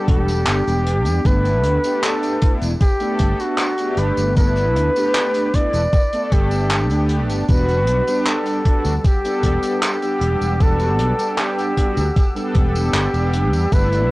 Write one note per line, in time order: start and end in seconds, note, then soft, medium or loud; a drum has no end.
0.00 0.62 G3 medium
0.00 0.62 B3 medium
0.00 0.63 D4 medium
0.00 0.63 A4 loud
0.08 0.47 E1 medium
0.08 1.27 G4 loud
0.08 kick loud
0.08 closed hi-hat medium
0.28 closed hi-hat medium
0.28 tambourine soft
0.47 0.60 G1 medium
0.47 clap loud
0.47 closed hi-hat medium
0.47 tambourine soft
0.66 1.06 E1 medium
0.66 1.20 G3 medium
0.66 1.20 B3 medium
0.66 1.20 D4 medium
0.66 1.21 G4 loud
0.66 closed hi-hat medium
0.66 tambourine soft
0.86 closed hi-hat loud
1.05 1.18 E2 medium
1.05 closed hi-hat medium
1.05 tambourine medium
1.24 1.64 G1 medium
1.24 1.79 A3 medium
1.24 1.79 B3 medium
1.24 1.79 D4 medium
1.24 1.80 E4 loud
1.24 2.05 B4 loud
1.24 kick loud
1.24 closed hi-hat medium
1.24 tambourine soft
1.45 closed hi-hat medium
1.45 tambourine soft
1.63 1.77 D2 medium
1.63 closed hi-hat loud
1.83 2.37 A3 medium
1.83 2.37 B3 medium
1.83 2.38 D4 medium
1.83 2.38 G4 loud
1.83 closed hi-hat medium
1.83 tambourine medium
2.03 2.55 A4 loud
2.03 clap loud
2.03 closed hi-hat medium
2.03 tambourine soft
2.22 closed hi-hat medium
2.22 tambourine soft
2.41 2.70 A3 medium
2.41 2.70 B3 medium
2.41 2.71 D4 medium
2.41 2.71 E4 medium
2.41 kick loud
2.41 closed hi-hat loud
2.61 2.74 E1 medium
2.61 closed hi-hat medium
2.61 tambourine medium
2.81 3.42 G4 loud
2.81 kick loud
2.81 closed hi-hat medium
2.81 tambourine soft
3.00 3.74 A3 medium
3.00 3.74 B3 medium
3.00 3.74 D4 medium
3.00 3.75 A4 loud
3.00 closed hi-hat medium
3.00 tambourine soft
3.19 3.33 G1 medium
3.19 kick medium
3.19 closed hi-hat loud
3.40 4.00 F#4 loud
3.40 closed hi-hat medium
3.40 tambourine medium
3.58 clap loud
3.58 closed hi-hat medium
3.58 tambourine soft
3.78 4.32 A3 medium
3.78 4.32 B3 medium
3.78 4.32 D4 medium
3.78 4.33 G4 loud
3.78 closed hi-hat medium
3.78 tambourine soft
3.97 4.10 G1 loud
3.97 4.37 B4 loud
3.97 closed hi-hat loud
4.17 4.75 G1 medium
4.17 closed hi-hat medium
4.17 tambourine soft
4.36 4.91 A3 medium
4.36 4.91 B3 medium
4.36 4.91 D4 medium
4.36 4.92 E4 loud
4.36 5.56 B4 loud
4.36 kick loud
4.36 closed hi-hat medium
4.36 tambourine soft
4.56 closed hi-hat medium
4.56 tambourine soft
4.75 4.88 D2 loud
4.75 closed hi-hat loud
4.95 5.49 A3 loud
4.95 5.49 B3 medium
4.95 5.50 D4 medium
4.95 5.50 G4 loud
4.95 closed hi-hat medium
4.95 tambourine medium
5.14 clap loud
5.14 closed hi-hat medium
5.14 tambourine soft
5.34 closed hi-hat medium
5.34 tambourine soft
5.53 5.81 A3 medium
5.53 5.82 B3 medium
5.53 5.82 D4 medium
5.53 5.82 E4 medium
5.53 6.34 D5 loud
5.53 kick medium
5.53 closed hi-hat medium
5.73 5.86 E1 medium
5.73 closed hi-hat medium
5.73 tambourine soft
5.93 kick loud
5.93 closed hi-hat medium
5.93 tambourine soft
6.13 6.86 A3 medium
6.13 6.86 B3 medium
6.13 6.86 D4 medium
6.13 6.87 A4 loud
6.13 closed hi-hat soft
6.13 tambourine soft
6.32 6.91 G1 medium
6.32 7.22 G4 loud
6.32 kick loud
6.32 closed hi-hat medium
6.51 closed hi-hat soft
6.51 tambourine medium
6.70 clap loud
6.70 closed hi-hat medium
6.70 tambourine soft
6.90 7.29 D2 medium
6.90 7.44 A3 medium
6.90 7.44 B3 medium
6.90 7.44 D4 medium
6.90 7.45 G4 loud
6.90 closed hi-hat medium
6.90 tambourine soft
7.09 closed hi-hat loud
7.29 7.41 G1 medium
7.29 closed hi-hat medium
7.29 tambourine soft
7.48 7.87 E1 loud
7.48 8.02 G3 medium
7.48 13.68 G3 medium
7.48 8.03 B3 medium
7.48 8.03 D4 medium
7.48 8.03 F#4 loud
7.48 8.29 B4 loud
7.48 13.68 F#5 medium
7.48 13.68 D6 medium
7.48 14.11 E6 medium
7.48 kick loud
7.48 closed hi-hat medium
7.48 tambourine soft
7.68 closed hi-hat soft
7.68 tambourine soft
7.87 8.00 B1 medium
7.87 closed hi-hat medium
8.07 8.61 G3 medium
8.07 8.61 B3 medium
8.07 8.61 D4 medium
8.07 8.61 G4 loud
8.07 closed hi-hat medium
8.07 tambourine medium
8.26 8.97 A4 loud
8.26 clap loud
8.26 closed hi-hat medium
8.26 tambourine soft
8.46 closed hi-hat soft
8.46 tambourine soft
8.65 8.93 G3 medium
8.65 8.93 B3 medium
8.65 8.94 D4 medium
8.65 8.94 F#4 medium
8.65 kick loud
8.65 closed hi-hat medium
8.85 8.97 D2 medium
8.85 closed hi-hat medium
8.85 tambourine medium
8.97 9.07 A4 medium
9.05 9.83 G4 loud
9.05 kick loud
9.05 closed hi-hat medium
9.05 tambourine soft
9.23 9.97 G3 medium
9.23 9.97 B3 medium
9.23 9.98 D4 medium
9.23 9.98 A4 loud
9.23 closed hi-hat medium
9.23 tambourine soft
9.43 9.56 E1 medium
9.43 kick medium
9.43 closed hi-hat loud
9.63 closed hi-hat medium
9.63 tambourine medium
9.82 10.63 G4 loud
9.82 clap loud
9.82 closed hi-hat medium
9.82 tambourine soft
10.02 10.55 G3 medium
10.02 10.56 B3 medium
10.02 10.56 D4 medium
10.02 10.56 G4 loud
10.02 closed hi-hat medium
10.02 tambourine soft
10.21 10.34 E1 loud
10.21 closed hi-hat medium
10.41 10.99 E1 medium
10.41 closed hi-hat medium
10.41 tambourine medium
10.59 11.14 G3 medium
10.59 11.14 B3 medium
10.59 11.14 D4 medium
10.59 11.15 F#4 loud
10.59 11.41 A4 loud
10.59 kick loud
10.59 closed hi-hat medium
10.59 tambourine soft
10.80 closed hi-hat soft
10.80 tambourine soft
10.99 11.12 B1 medium
10.99 closed hi-hat loud
11.18 11.72 G3 medium
11.18 11.72 B3 medium
11.18 11.73 D4 medium
11.18 11.73 G4 loud
11.18 closed hi-hat medium
11.18 tambourine medium
11.38 12.29 G4 loud
11.38 clap loud
11.38 closed hi-hat medium
11.38 tambourine soft
11.58 closed hi-hat medium
11.58 tambourine soft
11.76 12.05 G3 medium
11.76 12.05 B3 medium
11.76 12.05 D4 medium
11.76 12.06 F#4 medium
11.76 kick medium
11.76 closed hi-hat loud
11.97 12.09 D2 medium
11.97 closed hi-hat soft
11.97 tambourine medium
12.16 kick loud
12.16 closed hi-hat medium
12.16 tambourine soft
12.34 13.08 G3 medium
12.34 13.09 B3 medium
12.34 13.09 D4 medium
12.34 13.09 A4 loud
12.34 closed hi-hat soft
12.34 tambourine soft
12.55 12.93 E1 medium
12.55 13.74 G4 loud
12.55 kick loud
12.55 closed hi-hat loud
12.75 closed hi-hat medium
12.75 tambourine medium
12.93 13.06 G1 medium
12.93 clap loud
12.93 closed hi-hat medium
12.93 tambourine soft
13.13 13.52 E1 loud
13.13 13.67 G3 medium
13.13 13.67 B3 medium
13.13 13.67 D4 medium
13.13 13.68 G4 loud
13.13 closed hi-hat medium
13.13 tambourine soft
13.33 closed hi-hat loud
13.52 13.65 E2 medium
13.52 closed hi-hat medium
13.52 tambourine medium
13.71 14.10 G1 loud
13.71 14.11 A3 medium
13.71 14.11 B3 medium
13.71 14.11 D4 medium
13.71 14.11 E4 loud
13.71 14.11 A4 medium
13.71 14.11 B4 loud
13.71 14.11 G5 medium
13.71 14.11 B5 medium
13.71 kick loud
13.71 closed hi-hat medium
13.71 tambourine medium
13.93 closed hi-hat medium
13.93 tambourine soft